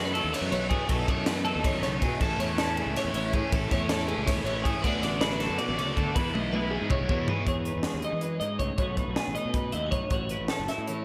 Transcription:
Already playing: F#2 B2 E3 F#3 A3 D#4 E4 B4
0.04 B3
0.13 F#3 A3 D#4 A4, ride
0.24 D#2
0.33 C#5, snare, ride
0.41 F#2
0.51 B1 F#2 F#3 A3 B3 D#4 C#5, ride
0.70 B2 F#3 A3 D#4 E4 G#4, kick, ride
0.87 B1 B2 F#3 A3 D#4 A4, kick, ride
1.08 F#2 F#3 A3 D#4 C#5, kick, ride
1.26 B2 E3 F#3 A3 B3 D#4 B4, snare, ride
1.45 F#3 A3 D#4 A4, ride
1.55 D#2
1.64 D#3 C#5, kick, ride
1.73 F#2
1.82 B1 C#3 F#3 A3 D#4 C#5, snare, ride
2.01 B2 F#3 A3 D#4 G#4, kick, ride
2.20 A1 A2 E3 A3 C#4 E4 A4, kick, crash
2.38 E2 A3 C#4 E4 C#5, ride
2.57 A2 E3 A3 C#4 E4 A4, snare, ride
2.76 A3 C#4 E4 G#4, ride
2.86 C#2
2.96 E4 C#5, snare, ride
3.05 E2
3.14 A1 E3 A3 C#4 E4 C#5, ride
3.32 A2 E3 A3 C#4 E4 G#4, kick, ride
3.37 E4
3.50 A1 A2 E3 A3 C#4 E4 A4, kick, ride
3.70 E2 A3 C#4 E4 C#5, kick, snare, ride
3.88 A2 E3 A3 C#4 E4 A4, snare, ride
4.08 A3 C#4 E4 G#4, ride
4.18 C#2
4.26 E4 C#5, kick, snare, ride
4.36 E2
4.44 A1 E3 A3 C#4 E4 C#5, ride
4.64 A2 E3 A3 C#4 E4 G#4, kick, ride
4.82 D2 D3 F#3 A3 B3 D4 F#4 B4, kick, crash
4.87 D4 E4
5.02 A1 A3 D4 F#4 D5, snare, ride
5.20 D3 F#3 G#3 A3 D4 F#4 B4, snare, ride
5.31 B3
5.40 A3 D4 F#4 A4, snare, ride
5.49 F#2
5.58 B2 D5, ride
5.69 A1
5.77 D2 C#3 A3 D4 F#4 D5, ride
5.95 D2 D3 A3 D4 F#4 A4, kick, ride
6.14 E2 E3 G#3 B3 E4 B4, kick, ride
6.33 B1 G#3 B3 E4 D#5, high tom
6.52 E3 G#3 B3 E4 B4, high tom
6.71 G#3 B3 E4 G#4
6.82 G#2
6.90 C#5, kick, mid tom
7.01 B1
7.09 E2 B2 G#3 B3 E4 C#5, kick
7.28 E3 G#3 B3 D#4 E4 G#4, floor tom
7.47 E2 G#4 C#5, kick, closed hi-hat
7.65 D#4 B4, closed hi-hat
7.76 E2
7.83 G#3 G#4, snare, closed hi-hat
7.94 D#2
8.02 D#5, closed hi-hat
8.06 D#4
8.13 E3
8.21 F#2 B4, closed hi-hat
8.40 G#2 D#5, closed hi-hat
8.59 C#2 A2 C#5, kick, closed hi-hat
8.78 B1 B2 F#3 A3 D#4 C#5, kick, closed hi-hat
8.83 F#4
8.97 D#4 B4, kick, closed hi-hat
9.08 B1
9.16 A3 G#4, snare, closed hi-hat
9.27 A1
9.35 D#4 D#5, closed hi-hat
9.45 B2
9.54 F#2 B4, kick, closed hi-hat
9.72 D#2 E4 D#5, closed hi-hat
9.86 F#4
9.91 B1 C#5, kick, closed hi-hat
9.96 D#4
10.10 A1 A2 F#4 C#5, kick, closed hi-hat
10.29 E4 B4, closed hi-hat
10.40 A1
10.48 C#4 A4, snare, closed hi-hat
10.59 F#1
10.68 E4 E5, snare, closed hi-hat
10.78 A2
10.87 E3 C#5, closed hi-hat

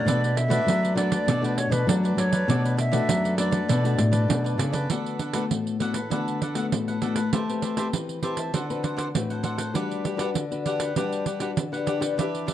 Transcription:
Already playing: A3 D4 F#4 D5
0.05 B2 D4 A4 B4 D5, pandeiro
0.23 A4 B4 D5, pandeiro
0.37 E5, muted cavaquinho stroke, pandeiro
0.48 A3 D4 F#4 A4 B4 D5, pandeiro
0.66 F#2 F#3 A3 D4 F#4, pandeiro
0.82 A4 B4 D5, pandeiro
0.95 A3 D4 F#4 A4 B4 D5, pandeiro
1.12 A4 B4 D5, pandeiro
1.26 B2 D4 A4 B4 D5, pandeiro
1.41 A3 D4 F#4 A4 B4 D5, pandeiro
1.57 C#5, muted cavaquinho stroke, pandeiro
1.70 B2 A4 B4 D5, pandeiro
1.87 F#2 F#3 A3 D4 F#4 D5, pandeiro
2.04 A4 B4 D5, pandeiro
2.17 F#3 D4 A4 B4 C#5 D5, pandeiro
2.32 A4 B4 D5, pandeiro
2.48 B2 A3 D4 F#4 A4 B4 D5, pandeiro
2.64 A4 B4 D5, pandeiro
2.77 E5, muted cavaquinho stroke, pandeiro
2.92 A3 D4 F#4 A4 B4 D5, pandeiro
3.09 F#2 F#3, pandeiro
3.24 A4 B4 D5, pandeiro
3.37 A3 D4 F#4 A4 B4 D5, pandeiro
3.51 A4 B4 D5, pandeiro
3.69 B2 D4 A4 B4 D5, pandeiro
3.84 A3 D4 F#4 A4 B4 D5, pandeiro
3.98 A2, muted cavaquinho stroke, pandeiro
4.12 A4 B4 D5, pandeiro
4.28 F#2 B2 A3 D4 F#4, pandeiro
4.44 A4 B4 D5, pandeiro
4.58 C#3 D4 A4 B4 D5, pandeiro
4.73 A4 B4 D5, pandeiro
4.90 D3 A3 B3 D4 F#4 A4 B4 F#5, pandeiro
5.06 pandeiro
5.19 D4 A4 B4 F#5, pandeiro
5.33 A3 B3 D4 F#4 A4 B4 F#5, pandeiro
5.50 A2, pandeiro
5.67 pandeiro
5.79 A3 B3 D4 F#4 A4 B4 F#5, pandeiro
5.94 A4 B4 F#5, pandeiro
6.10 D3 A3 B3 D4 F#4 A4 B4 F#5, pandeiro
6.28 pandeiro
6.41 D4 A4 B4 F#5, pandeiro
6.55 A3 B3 D4 F#4 A4 B4 F#5, pandeiro
6.72 A2, pandeiro
6.88 A4 B4 F#5, pandeiro
7.01 A3 B3 D4 F#4 A4 B4 F#5, pandeiro
7.16 A4 B4 F#5, pandeiro
7.32 A3 C4 G4 B4 C5 E5 A5, pandeiro
7.49 C4 G4 B4, pandeiro
7.62 G4 C5 E5 A5, pandeiro
7.77 C4 G4 B4 C5 E5 A5, pandeiro
7.93 E3, pandeiro
8.09 pandeiro
8.23 C4 G4 B4 C5 E5 A5, pandeiro
8.37 C5 E5 A5, pandeiro
8.53 D3 C4 D4 F#4 A4 B4 C5 F#5, pandeiro
8.70 C4 F#4 B4, pandeiro
8.83 D4 A4 C5 F#5, pandeiro
8.97 D4 A4 C5 F#5, pandeiro
9.14 A2 C4 F#4 B4, pandeiro
9.30 A4 C5 F#5, pandeiro
9.43 D4 A4 C5 F#5, pandeiro
9.58 A4 C5 F#5, pandeiro
9.74 G3 D4 F#4 G4 B4 F#5, pandeiro
9.91 pandeiro
10.04 D4 G4 B4 F#5, pandeiro
10.17 D4 F#4 G4 B4 F#5, pandeiro
10.34 D3, pandeiro
10.51 D4 F#4 B4, pandeiro
10.65 D4 G4 B4 F#5, pandeiro
10.80 G4 B4 F#5, pandeiro
10.96 G3 D4 F#4 G4 B4 F#5, pandeiro
11.12 pandeiro
11.26 D4 G4 B4 F#5, pandeiro
11.39 D4 F#4 G4 B4 F#5, pandeiro
11.56 D3, pandeiro
11.72 D4 F#4 G4 B4 F#5, pandeiro
11.87 D4 G4 B4 F#5, pandeiro
12.00 D4 G4 B4 F#5, pandeiro
12.17 E3 D4 G4 B4 E5, pandeiro
12.35 pandeiro
12.47 D4 G4 B4 E5, pandeiro

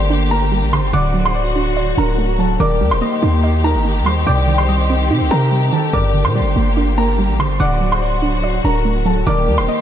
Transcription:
Already playing: G1 G2 D3 G3 A#3 G4 C5 C6
0.10 D4
0.31 A#3 A#4 A#5
0.52 G3
0.62 A#1
0.73 D3 C5 C6
0.78 G1
0.93 D1 D3 F#3 F#4 D5 F#5 D6
1.14 F#3
1.25 C5 C6
1.35 D5
1.56 D4
1.77 D5
1.98 D1 D4 A#4 A#5
2.18 A3
2.39 F#3 A4 A5
2.60 D#1 D#3 A#3 G4 A#4 D5 D6
2.81 D#2 G3
2.91 D#1 C5 C6
3.02 A#3 D#5
3.23 D#2 D#4
3.43 D#5
3.64 D#4 A#4 A#5
3.75 G1
3.85 A#3
4.01 D#2
4.06 G3 C5 C6
4.27 C2 C3 C4 D5 G5 D6
4.47 D#3
4.58 C5 C6
4.69 G3 D#5
4.90 C4
5.10 C3 D#4
5.21 C2
5.31 C3 C4 A#4 A#5
5.52 G3
5.73 D#3 A4 A5
5.93 G1 G2 D3 A#3 A#4 D5 D6
6.14 D3
6.25 A#2 C5 C6
6.35 G3 D5
6.40 G1
6.56 G1 A#3
6.77 D4
6.98 A#3 A#4 A#5
7.19 G3
7.29 A#1
7.39 D3 C5 C6
7.45 G1
7.60 D1 D3 F#3 F#4 D5 F#5 D6
7.81 F#3
7.92 C5 C6
8.02 D5
8.22 D4
8.44 D5
8.64 D1 D4 A#4 A#5
8.85 A3
9.05 F#3 A4 A5
9.27 D#1 D#3 A#3 G4 A#4 D5 D6
9.48 D#2 G3
9.58 D#1 C5 C6
9.68 A#3 D#5

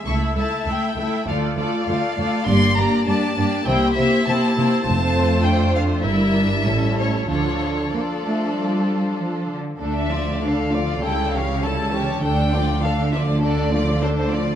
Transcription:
0.05 C#2 A3 E4 A4 E5 C#6
0.36 C#2 A3 E4 A4 E5 A5
0.66 C#2 A3 E4 A4 E5 G5
0.97 C#2 A3 E4 A4 E5
1.26 D2 A3 F4 A4 D5 F5
1.57 D2 A3 F4 A4 D5
1.87 D2 A3 F4 A4 D5 F5
2.17 D2 A3 F4 A4 D5
2.46 G1 G2 A#3 D4 G4 D5 C6
2.76 G2 A#3 D4 G4 D5 A#5
3.05 G2 A#3 D4 G4 D5 A5
3.36 G2 A#3 D4 G4 D5
3.66 C2 C3 A#3 E4 G4 C5 G5
3.94 C3 A#3 E4 E5
3.98 G4 C5
4.26 C3 A#3 E4 G4 C5 A5
4.56 C3 A#3 E4 G4 C5
4.83 F1 F2 A3 C4 A5
4.88 F4 C5
5.43 D4 G5
5.74 F5
6.04 G1 G2 G3 E4 A#4 E5
6.34 D4
6.66 A1 A2 G3 C#4 E4 A4
6.98 C#5
7.28 D2 D3 F3 D4 F4 A4 C#5
7.91 F3 A#3 D4 F4 A4 D5
8.23 A3
8.55 G3
9.18 F3
9.50 D3
9.80 D2 D3 A3 D4 A4
9.94 E5
10.11 F3 A3 F4 D5
10.42 A3 D4 A4 F5
10.72 F3 A3 F4 D5
11.03 C#2 C#3 G3 E4 A4 G5
11.32 E3 C#4 G4 C#5 F5
11.62 G3 E4 A4 A5
11.93 E3 C#4 G4 C#5
12.23 D2 D3 A3 D4 A4 G5
12.53 F3 A3 F4 D5
12.82 A3 D4 A4 F5
13.12 F3 A3 F4 D5 E5
13.42 A3 D4 A4 D5
13.72 F3 A3 F4 D5
14.01 A3 D4 A4 C5
14.17 C5
14.31 F3 A3 F4 D5

